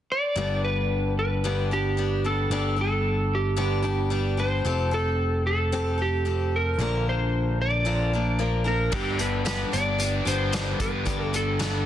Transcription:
0.12 electric slide guitar D5
0.36 picked electric bass G1, steel-string acoustic guitar G2 D3 G3 B3 D4 G4
0.65 electric slide guitar B4
1.19 electric slide guitar B4
1.44 steel-string acoustic guitar G2 D3 G3 B3 D4 G4
1.71 steel-string acoustic guitar G3 B3 D4 G4, electric slide guitar G4
1.97 steel-string acoustic guitar G3 B3 D4 G4
2.24 steel-string acoustic guitar G3 B3 D4 G4, electric slide guitar A4
2.50 picked electric bass G1, steel-string acoustic guitar G2 D3 G3 B3 D4 G4
2.76 steel-string acoustic guitar G3 B3 D4 G4
2.81 electric slide guitar A4
3.35 electric slide guitar G4
3.56 steel-string acoustic guitar G2 D3 G3 B3 D4 G4
3.82 steel-string acoustic guitar G3 B3 D4 G4
4.10 steel-string acoustic guitar G3 B3 D4 G4
4.37 steel-string acoustic guitar G3 B3 D4 G4, electric slide guitar C5
4.65 picked electric bass F1, steel-string acoustic guitar F3 C4 G4 A4
4.91 steel-string acoustic guitar C4 G4 A4, electric slide guitar A4
5.47 electric slide guitar A4
5.72 steel-string acoustic guitar F3 C4 G4 A4
5.98 steel-string acoustic guitar C4 G4 A4
6.02 electric slide guitar G4
6.25 steel-string acoustic guitar F3 C4 G4 A4
6.56 electric slide guitar A#4
6.78 picked electric bass A#1, steel-string acoustic guitar A#2 D3 F3 A#3 D4 A#4
7.09 electric slide guitar C5
7.62 electric slide guitar D5
7.85 steel-string acoustic guitar A#2 D3 F3 A#3 D4 A#4
8.13 steel-string acoustic guitar F3 A#3 D4 A#4
8.39 steel-string acoustic guitar F3 A#3 D4 A#4
8.64 steel-string acoustic guitar F3 A#3 D4 A#4, electric slide guitar A#4
8.92 picked electric bass G1, steel-string acoustic guitar G2 D3 G3 B3 D4 G4, electric slide guitar G4, kick, crash
9.19 overdriven electric guitar D3, steel-string acoustic guitar G3 B3 D4 G4, electric slide guitar B4, closed hi-hat
9.45 steel-string acoustic guitar G2 D3 G3 B3 D4 G4, electric slide guitar B4, snare, closed hi-hat
9.72 picked electric bass G1, steel-string acoustic guitar G3 B3 D4 G4, electric slide guitar D5, closed hi-hat
9.99 steel-string acoustic guitar G3 B3 D4 G4, closed hi-hat
10.25 picked electric bass G1, steel-string acoustic guitar G3 B3 D4 G4, electric slide guitar C5, closed hi-hat
10.52 steel-string acoustic guitar G2 D3 G3 B3 D4 G4, snare, closed hi-hat
10.80 picked electric bass G1, overdriven electric guitar G3, electric slide guitar B4, kick, closed hi-hat
11.05 picked electric bass G1, steel-string acoustic guitar G2 D3 G3 B3 D4 G4, kick, closed hi-hat
11.24 electric slide guitar A4
11.33 overdriven electric guitar D3, steel-string acoustic guitar G3 B3 D4 G4, electric slide guitar A4, closed hi-hat
11.59 steel-string acoustic guitar G2 D3 G3 B3 D4 G4, snare, closed hi-hat

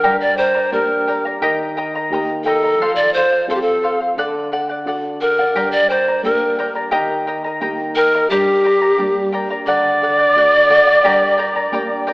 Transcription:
Already playing: pan flute A#4
0.03 nylon-string guitar G2, charango G4 A#4 D5 G5 A#5
0.21 pan flute D5
0.38 charango A#4 D5 G5 A#5, pan flute C5
0.54 charango A#4 D5 A#5
0.72 nylon-string guitar A#3 D4 G4, charango A#4 D5 G5 A#5, pan flute A#4
1.08 charango A#4 D5 G5 A#5
1.25 charango A#4 D5 A#5
1.41 nylon-string guitar D#3, charango G4 A#4 D#5 G5 A#5
1.77 charango A#4 D#5 G5 A#5
1.95 charango A#4 D#5 A#5
2.10 nylon-string guitar A#3 D#4 G4, charango A#4 G5
2.14 charango D#5 A#5
2.44 pan flute A4, charango A#4 D#5 G5 A#5
2.64 charango A#4 D#5 A#5
2.78 nylon-string guitar F3, charango A4 C5 F5
2.96 pan flute D5
3.14 charango A4 C5 F5, pan flute C5
3.33 charango C5 F5
3.47 nylon-string guitar C4 F4 A4, charango A4 C5 F5, pan flute A4
3.55 pan flute G4
3.62 pan flute A4
3.83 charango A4 C5 F5
4.00 charango C5 F5
4.17 nylon-string guitar D3, charango A4 D5 F#5
4.52 charango A4 D5 F#5
4.69 charango D5 F#5
4.85 nylon-string guitar D4 F#4, charango A4 D5 F#5
5.21 charango A4 D5 F#5, pan flute A#4
5.39 charango D5 F#5
5.55 nylon-string guitar G2, charango G4 A#4 D5 G5 A#5
5.72 pan flute D5
5.89 charango A#4 D5 G5 A#5, pan flute C5
6.08 charango A#4 D5 A#5
6.23 nylon-string guitar A#3 D4 G4, pan flute A#4, charango A#4 D5 G5 A#5
6.58 charango A#4 D5 G5 A#5
6.75 charango A#4 D5 A#5
6.91 nylon-string guitar D#3, charango G4 A#4 D#5 G5 A#5
7.27 charango A#4 D#5 G5 A#5
7.44 charango A#4 D#5 A#5
7.60 nylon-string guitar A#3 D#4 G4, charango A#4 D#5 G5 A#5
7.95 pan flute A#4, charango A#4 D#5 G5 A#5
8.14 charango A#4 D#5 A#5
8.30 nylon-string guitar G2, pan flute G4, charango G4 A#4 D5 G5 A#5
8.64 charango A#4 D5 G5 A#5
8.81 charango A#4 D5 A#5
8.97 nylon-string guitar G3 A#3 D4, charango A#4 D5 G5 A#5
9.32 charango A#4 D5 G5 A#5
9.50 charango A#4 D5 A#5
9.66 nylon-string guitar D3, charango A4 D5 F#5, pan flute D5, quena D6
10.02 charango A4 D5 F#5
10.19 charango D5 F#5
10.35 nylon-string guitar A3 D4 F#4, charango A4 D5 F#5
10.69 charango A4 D5 F#5
10.87 charango D5 F#5
11.03 nylon-string guitar G2, charango G4 A#4 D5 G5 A#5
11.38 charango A#4 D5 G5 A#5
11.56 charango A#4 D5 A#5
11.72 nylon-string guitar A#3 D4 G4, charango A#4 D5 G5 A#5
12.07 charango A#4 D5 G5 A#5

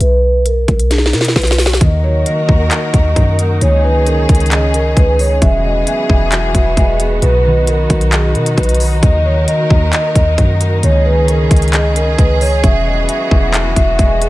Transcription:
0.00 808-style bass B1, vibraphone B4, closed hi-hat
0.23 vibraphone B4
0.46 vibraphone A#4, closed hi-hat
0.68 808-style bass B1, kick, closed hi-hat
0.79 closed hi-hat
0.91 vibraphone G#4, snare, closed hi-hat
0.98 snare
1.06 snare
1.13 808-style bass B2, vibraphone A#4, snare, closed hi-hat
1.21 snare, closed hi-hat
1.28 snare
1.36 808-style bass B1, vibraphone B4, kick, snare, closed hi-hat
1.42 snare, closed hi-hat
1.47 snare, closed hi-hat
1.53 closed hi-hat
1.58 snare, open hi-hat
1.66 snare
1.73 snare
1.81 808-style bass D#2, string section D#3 D#4 F#4 A#4, harp D#3, vibraphone D#5, kick, closed hi-hat
2.04 harp F#3, vibraphone C#5
2.26 harp A#3, closed hi-hat
2.49 808-style bass D#2, kick
2.71 harp D#5, clap, closed hi-hat
2.94 808-style bass D#2, vibraphone D#5, kick, closed hi-hat
3.16 808-style bass F#2, harp F#3, kick, closed hi-hat
3.39 harp A#3, vibraphone A#4, closed hi-hat
3.61 808-style bass C#2, string section C#3 C#4 G#4, harp D#3, vibraphone C#5, closed hi-hat
3.83 harp G#3, vibraphone B4
4.07 harp C#4, vibraphone A#4, closed hi-hat
4.29 808-style bass C#2, kick, closed hi-hat
4.35 closed hi-hat
4.40 closed hi-hat
4.46 closed hi-hat
4.51 vibraphone G#4, harp D#5, clap, closed hi-hat
4.74 vibraphone A#4, closed hi-hat
4.97 808-style bass C#2, harp G#3, vibraphone B4, kick, closed hi-hat
5.19 harp C#4, vibraphone C#5, open hi-hat
5.42 808-style bass E1, string section E3 B3 F#4 G#4, harp F#3, vibraphone E5, kick, closed hi-hat
5.64 harp G#3, vibraphone D#5
5.87 harp B3, vibraphone E5, closed hi-hat
6.10 808-style bass E1, kick
6.32 harp F#4, clap, closed hi-hat
6.55 808-style bass E1, vibraphone E5, kick, closed hi-hat
6.77 808-style bass E1, harp G#3, kick, closed hi-hat
7.00 harp B3, vibraphone G#4, closed hi-hat
7.22 808-style bass B1, harp B2, string section D#4, vibraphone B4, closed hi-hat
7.45 harp D#3, vibraphone B4
7.67 harp F#3, vibraphone A#4, closed hi-hat
7.90 808-style bass B1, kick, closed hi-hat
8.01 closed hi-hat
8.12 harp D#4, vibraphone G#4, clap, closed hi-hat
8.35 808-style bass B2, vibraphone A#4, closed hi-hat
8.46 closed hi-hat
8.58 808-style bass B1, harp D#3, vibraphone B4, kick, closed hi-hat
8.63 closed hi-hat
8.69 closed hi-hat
8.75 closed hi-hat
8.80 harp F#3, open hi-hat
9.03 808-style bass D#2, harp D#3, string section D#3 A#4, vibraphone D#5, kick, closed hi-hat
9.25 harp F#3, vibraphone C#5
9.48 harp A#3, vibraphone D#5, closed hi-hat
9.70 808-style bass D#2, kick
9.93 harp D#5, clap, closed hi-hat
10.15 808-style bass D#2, vibraphone D#5, kick, closed hi-hat
10.38 808-style bass F#2, harp F#3, kick, closed hi-hat
10.61 harp A#3, vibraphone A#4, closed hi-hat
10.83 808-style bass C#2, string section C#3 C#4 G#4, harp D#3, vibraphone C#5, closed hi-hat
11.05 harp G#3, vibraphone B4
11.28 harp C#4, vibraphone A#4, closed hi-hat
11.51 808-style bass C#2, kick, closed hi-hat
11.56 closed hi-hat
11.62 closed hi-hat
11.68 closed hi-hat
11.73 vibraphone G#4, harp D#5, clap, closed hi-hat
11.96 vibraphone A#4, closed hi-hat
12.18 808-style bass C#2, harp G#3, vibraphone B4, kick, closed hi-hat
12.41 harp C#4, vibraphone C#5, open hi-hat
12.64 808-style bass E1, string section E3 B3 F#4, harp F#3, vibraphone E5, kick, closed hi-hat
12.86 harp G#3, vibraphone D#5
13.09 harp B3, vibraphone E5, closed hi-hat
13.31 808-style bass E1, kick
13.54 harp F#4, clap, closed hi-hat
13.76 808-style bass E1, vibraphone E5, kick, closed hi-hat
13.99 808-style bass E1, harp G#3, kick, closed hi-hat
14.22 harp B3, vibraphone G#4, closed hi-hat

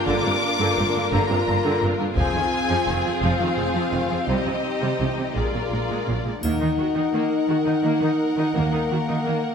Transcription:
Already playing: french horn section A#3 F4, viola section D4, violin section F4 A#4
0.07 double bass section G1, cello section G2, viola section D3, violin section D6
0.25 cello section G2, viola section C3
0.59 cello section G2, viola section D3
0.77 double bass section G1, cello section G2, viola section C3
0.95 cello section G2, viola section D3
1.12 double bass section G1, cello section G2, viola section D3, violin section A#5
1.30 cello section G2, viola section C3
1.47 double bass section G1, cello section G2, viola section D3
1.64 cello section G2, viola section D3
1.82 double bass section G1, cello section G2, viola section C3
2.00 cello section G2, viola section D3
2.16 double bass section F1, cello section F2, viola section F3 C4, french horn section C4 F4, violin section F4 G#4 G#5, taiko
2.34 cello section F2, viola section D#3
2.69 cello section F2, viola section F3
2.86 double bass section F1, cello section F2, viola section D#3
3.04 cello section F2, viola section F3
3.22 double bass section F1, cello section F2, viola section F3, violin section F5
3.39 cello section F2, viola section D#3
3.57 double bass section F1, cello section F2, viola section F3
3.74 cello section F2, viola section F3
3.92 double bass section F1, cello section F2, viola section D#3
4.11 cello section F2, viola section F3
4.28 double bass section C2, cello section C3, viola section G3, violin section D#4 G4 D#5, french horn section G4
4.46 cello section C3, viola section F3
4.81 cello section C3, viola section G3
4.99 double bass section C2, cello section C3, viola section F3
5.17 cello section C3, viola section G3
5.35 double bass section A#1, cello section A#2, viola section G#3 F4, french horn section A#3 D4 G#4, violin section F4 A#4 D5
5.53 cello section A#2, viola section F#3
5.71 double bass section A#1, cello section A#2, viola section G#3
5.89 cello section A#2, viola section G#3
6.07 double bass section A#1, cello section A#2, viola section F#3
6.25 cello section A#2, viola section G#3
6.43 double bass section D#2, cello section D#3, viola section A#3, french horn section D#4, violin section A#4 F#5, triangle
6.60 cello section D#3, viola section D#4
6.78 cello section D#3, viola section F#4
6.95 cello section D#3, viola section D#4
7.13 cello section D#3, viola section A#3
7.49 cello section D#3, viola section F#4
7.66 cello section D#3, viola section D#4
7.83 cello section D#3, viola section A#3
8.01 cello section D#3, viola section D#4
8.37 cello section D#3, viola section D#4
8.54 double bass section D#2, cello section D#3, french horn section A#3, viola section A#3
8.72 cello section D#3, viola section D#4
8.91 cello section D#3, viola section F#4
9.08 cello section D#3, viola section D#4
9.26 cello section D#3, viola section A#3

